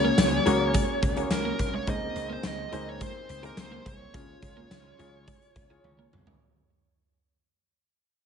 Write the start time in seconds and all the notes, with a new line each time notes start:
Already playing: C#2 C#3 F#3 A#3 C#4 F#4 G#4 C#5
0.05 A#3
0.18 C#2, snare, closed hi-hat, tambourine
0.46 C#2 G#3 A#3 C#4 F#4 G#4 C#5, closed hi-hat
0.74 G#3, kick, closed hi-hat
1.02 C#2, muted clean electric guitar stroke, kick, closed hi-hat
1.16 A#3 C#4 F#4 G#4 C#5, closed hi-hat
1.31 C#2 A#4, snare, closed hi-hat, tambourine
1.45 A#3
1.59 C2, muted clean electric guitar stroke, kick, closed hi-hat
1.74 G#3 C#5
1.87 C#2 C#3 G#3 A#3 C4 D#4 G#4 C5 D#5, kick, closed hi-hat
2.16 C#2, muted clean electric guitar stroke, closed hi-hat
2.30 A#3 C5
2.43 C#2 D#5, snare, closed hi-hat, tambourine
2.72 C#2 G#3 A#3 C4 D#4 G#4 C5, closed hi-hat
2.89 C#5
3.01 G#3 C5, kick, closed hi-hat
3.29 C#2, muted clean electric guitar stroke, closed hi-hat
3.43 A#3 C4 D#4 G#4 A#4 C5, closed hi-hat
3.57 C#2 C5, muted clean electric guitar stroke, snare, closed hi-hat, tambourine
3.72 A#3
3.86 C2 G#3 C#5, kick, closed hi-hat
4.13 C#2 C#3 G#3 C#4 F4 G#4 C#5, kick, closed hi-hat
4.43 C#2, muted clean electric guitar stroke, kick, closed hi-hat
4.57 A#3
4.71 C#2, snare, closed hi-hat, tambourine
4.99 C#2 G#3 F4 G#4 C#5, closed hi-hat
5.28 G#3, kick, closed hi-hat
5.42 closed hi-hat
5.56 C#2, muted clean electric guitar stroke, kick, closed hi-hat
5.70 C#4 F4 G#4 C#5
5.84 C#2, high tom
5.99 A#3
6.13 C2, muted clean electric guitar stroke, mid tom
6.27 G#3, floor tom